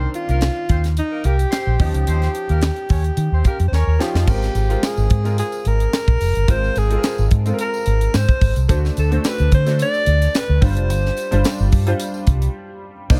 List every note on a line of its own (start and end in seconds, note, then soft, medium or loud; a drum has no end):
0.00 0.91 D#3 medium
0.00 0.91 C4 medium
0.00 0.91 D4 medium
0.00 0.91 A#4 medium
0.14 0.93 F4 medium
0.14 closed hi-hat medium
0.28 0.48 C2 medium
0.28 0.38 A#3 medium
0.28 0.39 A#4 medium
0.28 closed hi-hat medium
0.41 snare loud
0.41 closed hi-hat medium
0.69 0.99 D#2 medium
0.69 0.81 C4 medium
0.69 0.81 C5 medium
0.69 kick medium
0.69 closed hi-hat medium
0.84 snare soft
0.84 closed hi-hat soft
0.97 1.27 D#4 medium
0.97 closed hi-hat medium
1.11 1.22 A#3 medium
1.11 1.22 A#4 medium
1.24 1.44 C2 medium
1.24 1.36 A#3 medium
1.24 1.80 G4 loud
1.24 1.36 A#4 medium
1.24 closed hi-hat medium
1.39 closed hi-hat medium
1.51 1.73 C4 medium
1.51 1.74 C5 medium
1.51 snare loud
1.51 closed hi-hat medium
1.67 1.75 A#1 medium
1.79 1.90 D#2 loud
1.79 2.84 F3 medium
1.79 2.84 C#4 medium
1.79 2.84 D#4 medium
1.79 2.85 G4 medium
1.79 3.42 G4 medium
1.79 kick loud
1.79 open hi-hat medium
1.94 2.03 C#2 medium
1.94 closed hi-hat medium
2.07 2.26 D#2 medium
2.07 2.29 C4 medium
2.07 2.29 C5 loud
2.07 closed hi-hat medium
2.22 snare soft
2.22 closed hi-hat soft
2.35 closed hi-hat medium
2.49 2.69 D#2 medium
2.49 2.60 A#3 medium
2.49 2.60 A#4 medium
2.49 closed hi-hat soft
2.61 snare loud
2.61 closed hi-hat medium
2.76 closed hi-hat soft
2.89 3.09 D#2 medium
2.89 3.02 C#4 medium
2.89 3.02 C#5 medium
2.89 kick medium
2.89 open hi-hat medium
3.04 closed hi-hat medium
3.17 3.28 D#3 medium
3.17 closed hi-hat medium
3.32 3.41 D#2 medium
3.32 3.43 C4 medium
3.32 3.43 C5 medium
3.45 3.57 A#3 medium
3.45 3.66 G4 medium
3.45 3.57 A#4 medium
3.45 kick medium
3.45 closed hi-hat medium
3.60 3.69 F2 medium
3.60 closed hi-hat medium
3.68 3.76 C5 medium
3.72 3.82 D#2 medium
3.72 3.95 C#4 medium
3.72 4.03 A#4 medium
3.72 3.95 C#5 medium
3.72 snare medium
3.87 3.96 D#2 medium
3.99 4.26 F3 medium
3.99 4.26 C#4 medium
3.99 4.26 D#4 medium
3.99 4.31 F4 medium
3.99 4.26 G4 medium
3.99 snare medium
4.14 4.24 F2 medium
4.14 snare medium
4.26 4.47 G#1 medium
4.26 4.67 G#3 medium
4.26 4.67 C4 medium
4.26 4.68 F4 medium
4.26 4.86 G4 medium
4.26 4.68 A#4 medium
4.26 kick loud
4.26 crash medium
4.26 tambourine soft
4.42 snare soft
4.42 closed hi-hat soft
4.42 tambourine soft
4.55 4.74 G#1 medium
4.55 closed hi-hat medium
4.55 tambourine soft
4.69 5.22 G#3 medium
4.69 5.22 C4 medium
4.69 5.22 F4 medium
4.69 5.22 A#4 medium
4.69 closed hi-hat medium
4.83 5.38 G#4 medium
4.83 snare loud
4.83 tambourine medium
4.97 5.06 G#1 medium
4.97 tambourine medium
5.10 5.40 G#2 loud
5.10 kick medium
5.10 closed hi-hat medium
5.24 6.28 G#3 medium
5.24 6.29 C4 medium
5.24 6.29 F4 medium
5.24 6.29 A#4 medium
5.24 closed hi-hat medium
5.24 tambourine soft
5.38 5.69 G#4 loud
5.38 closed hi-hat medium
5.38 tambourine soft
5.52 closed hi-hat soft
5.52 tambourine medium
5.65 5.85 G#1 medium
5.65 6.52 A#4 medium
5.65 closed hi-hat medium
5.80 closed hi-hat medium
5.93 snare loud
5.93 tambourine medium
6.08 6.17 A#1 medium
6.08 kick medium
6.08 closed hi-hat soft
6.21 6.31 F1 medium
6.21 open hi-hat medium
6.21 tambourine soft
6.35 6.45 G1 medium
6.35 closed hi-hat medium
6.48 6.68 G#1 medium
6.48 6.88 G#3 medium
6.48 6.88 C4 medium
6.48 6.88 F4 medium
6.48 6.89 A#4 medium
6.48 6.80 C5 loud
6.48 kick loud
6.48 closed hi-hat loud
6.48 tambourine soft
6.64 tambourine soft
6.76 6.95 G#1 medium
6.76 7.32 G#4 medium
6.76 closed hi-hat medium
6.76 tambourine soft
6.90 7.42 G#3 medium
6.90 7.43 C4 medium
6.90 7.43 F4 medium
6.90 6.97 A4 medium
6.90 closed hi-hat soft
6.98 7.46 A#4 medium
7.03 snare loud
7.03 tambourine medium
7.18 7.27 G#1 medium
7.18 tambourine soft
7.31 7.51 G#2 loud
7.31 kick medium
7.31 closed hi-hat medium
7.46 8.49 G#3 medium
7.46 8.50 C4 medium
7.46 8.50 F4 medium
7.46 7.53 A4 medium
7.46 closed hi-hat medium
7.46 tambourine soft
7.54 8.53 A#4 medium
7.59 8.17 A#4 loud
7.59 closed hi-hat medium
7.59 tambourine soft
7.74 tambourine soft
7.86 8.06 G#1 medium
7.86 closed hi-hat medium
8.01 closed hi-hat medium
8.14 8.25 G#2 loud
8.14 8.57 C5 loud
8.14 snare loud
8.14 tambourine medium
8.29 kick medium
8.29 closed hi-hat soft
8.41 8.52 G#1 medium
8.41 kick medium
8.41 open hi-hat medium
8.41 tambourine soft
8.56 8.65 C2 medium
8.56 closed hi-hat medium
8.56 tambourine soft
8.68 8.88 D2 medium
8.68 9.09 A3 medium
8.68 9.09 D4 medium
8.68 9.09 F#4 medium
8.68 9.09 C5 loud
8.68 kick loud
8.68 closed hi-hat loud
8.68 tambourine soft
8.85 snare soft
8.85 tambourine soft
8.97 9.16 D2 medium
8.97 9.28 A4 medium
8.97 closed hi-hat medium
8.97 tambourine soft
9.11 9.63 A3 medium
9.11 9.63 D4 medium
9.11 9.63 F#4 medium
9.11 9.64 C5 medium
9.11 closed hi-hat soft
9.24 9.53 B4 medium
9.24 snare loud
9.24 tambourine medium
9.38 9.48 D2 medium
9.38 closed hi-hat soft
9.38 tambourine medium
9.52 9.82 D3 medium
9.52 9.79 C5 medium
9.52 kick medium
9.52 closed hi-hat medium
9.66 10.62 A3 medium
9.66 10.60 D4 medium
9.66 10.62 F#4 medium
9.66 10.61 C5 medium
9.66 snare soft
9.66 closed hi-hat medium
9.66 tambourine soft
9.79 10.39 D5 loud
9.79 closed hi-hat medium
9.79 tambourine soft
9.94 tambourine soft
10.06 10.26 D2 loud
10.06 closed hi-hat medium
10.22 closed hi-hat medium
10.22 tambourine soft
10.35 10.64 B4 loud
10.35 snare loud
10.35 tambourine medium
10.49 10.58 D2 medium
10.61 10.77 G1 loud
10.61 11.28 G3 medium
10.61 11.28 D4 medium
10.61 11.28 F4 medium
10.61 11.28 C5 medium
10.61 11.70 C5 medium
10.61 kick loud
10.61 open hi-hat medium
10.61 tambourine soft
10.77 10.90 F1 medium
10.77 closed hi-hat medium
10.90 11.09 G1 loud
10.90 closed hi-hat loud
10.90 tambourine soft
11.06 snare soft
11.17 closed hi-hat medium
11.17 tambourine soft
11.31 11.41 G1 medium
11.31 11.84 G3 medium
11.31 11.84 D4 medium
11.31 11.84 F4 medium
11.31 11.84 C5 loud
11.31 closed hi-hat medium
11.44 snare loud
11.44 tambourine medium
11.58 11.69 G1 medium
11.58 tambourine medium
11.72 11.92 G2 medium
11.72 kick loud
11.72 open hi-hat medium
11.87 12.90 G3 medium
11.87 12.91 D4 medium
11.87 12.91 F4 medium
11.87 12.91 C5 loud
11.87 closed hi-hat medium
12.00 closed hi-hat loud
12.00 tambourine medium
12.14 tambourine soft
12.27 12.47 C2 loud
12.27 kick medium
12.27 closed hi-hat medium
12.42 closed hi-hat medium
13.10 13.20 C2 loud
13.10 13.20 A#3 loud
13.10 13.20 D4 medium
13.10 13.20 D#4 medium
13.10 13.20 F4 medium
13.10 13.20 C5 medium
13.10 kick loud
13.10 crash loud
13.10 tambourine soft